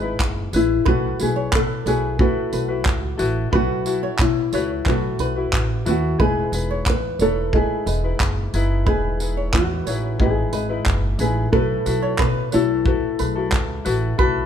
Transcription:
Already playing: G#1 G#3 E4 G#4 B4 D#5
0.02 D#4 E4 B4
0.20 F#1, kick, clap
0.53 A1 E4 G#4 B4, tambourine
0.84 B1 A3 E4 F#4 A4 B4, kick
1.20 B1 E4 F#4 G#4 B4, tambourine
1.36 C#5
1.52 B2 A4 B4, kick, clap
1.86 B1 E4 F#4 G#4 B4 C#5, tambourine
2.18 A3 E4 F#4 A4 B4, kick
2.52 B1 A3 E4 B4, tambourine
2.68 E4 F#4 B4
2.85 C#2, kick, clap
3.18 A1 E4 F#4 A4 B4, tambourine
3.51 B1 A3 E4 F#4 A4 B4, kick
3.55 F#4
3.85 E4 F#4 A4 B4, tambourine
4.03 C#5
4.19 B2 E4 B4, kick, clap
4.52 C#2 E4 F#4 A4 B4 C#5, tambourine
4.85 B1 A3 E4 F#4 A4 B4, kick, clap
4.89 F#4
5.18 B1 A3 E4 B4, tambourine
5.36 E4 F#4 B4
5.53 A1, kick, clap
5.86 D#2 E4 F#4 A4 B4, tambourine
6.18 E1 G#3 D#4 E4 G#4 B4 D#5, kick
6.52 E1 D#4 E4 G#4 B4, tambourine
6.71 C#5
6.86 E2 B4, kick, clap
7.19 E1 D#4 E4 A4 B4 C#5, tambourine
7.52 G#3 D#4 E4 G#4 B4 D#5, kick
7.85 E1 G#3 E4 B4 D#5, tambourine
8.04 D#4 E4 B4
8.20 F#1, kick, clap
8.54 F#1 D#4 E4 G#4 B4, tambourine
8.85 E1 G#3 D#4 E4 G#4 B4 D#5, kick
9.20 D#4 E4 G#4 B4, tambourine
9.37 C#5
9.53 E2 F#4 B4, kick, clap
9.86 A1 D#4 E4 G#4 B4 C#5, tambourine
10.18 G#1 G#3 D#4 E4 G#4 B4 D#5, kick
10.53 G#1 G#3 E4 B4 D#5, tambourine
10.69 D#4 E4 B4
10.86 F#1, kick, clap
11.19 A1 D#4 E4 G#4 B4, tambourine
11.52 B1 A3 E4 F#4 A4 B4, kick
11.86 B1 E4 F#4 A4 B4, tambourine
12.02 C#5
12.18 B2 B4, kick, clap
12.52 B1 E4 F#4 A4 B4 C#5, tambourine
12.85 A3 E4 F#4 A4 B4, kick
13.19 B1 A3 E4 G#4 B4, tambourine
13.36 E4 F#4 A4
13.52 C#2, kick, clap
13.85 A1 E4 F#4 A4 B4, tambourine
14.17 B1 A3 E4 F#4 A4 B4, kick

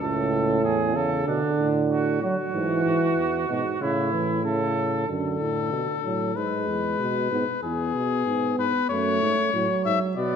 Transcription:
0.01 C#2 A2 A4
0.64 E2 G#4
0.95 C#3 A4
1.27 B2 D3 D4
1.58 A2
1.91 F#4
2.22 F#3 F#4
2.53 G#2 E3
2.85 G#2
3.18 E2
3.49 G#2 B2
3.81 A2 C#3 E4
4.13 E3
4.44 C#3 A4
5.08 F#2 D3 A4
5.40 A2
5.73 B2
6.03 A2 F#3
6.35 G#2 G#3 B4
6.68 E2
6.99 B2
7.31 G#2 B3
7.63 E2 B3 G#4
7.95 B2
8.26 G#2
8.59 G#2 B4
8.89 F#2 A3 C#5
9.22 G#2
9.53 A2 F#3
9.85 G#2 E5
10.17 B2 F#3 B3 D5

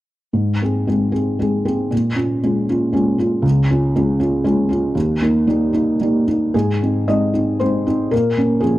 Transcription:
0.33 G#2
0.62 C4 G#4
0.87 G#3 C4 G#4
1.12 C4 G#4
1.39 G#3 C4 G#4
1.65 C4 G#4
1.91 A#2
2.15 C#4 F4
2.43 G#3 C#4 F4
2.69 C#4 F4
2.93 G#3 C#4 F4
3.18 C#4 F4
3.42 C#2
3.70 C#4 F4
3.96 G#3 C#4 F4
4.20 C#4 F4
4.44 G#3 C#4 F4
4.69 C#4 F4
4.95 D#2
5.22 A#3 D#4
5.47 G3 A#3 D#4
5.73 A#3 D#4
6.00 G3 A#3 D#4
6.28 A#3 D#4
6.54 G#2 G#4
6.82 C4 D#4
7.08 G#3 C4 D#4 D#5
7.34 C4 D#4
7.60 G#3 C4 D#4 C5
7.87 C4 D#4
8.11 A#2 A#4
8.38 A#3 C#4
8.60 F3 A#3 C#4 G#4

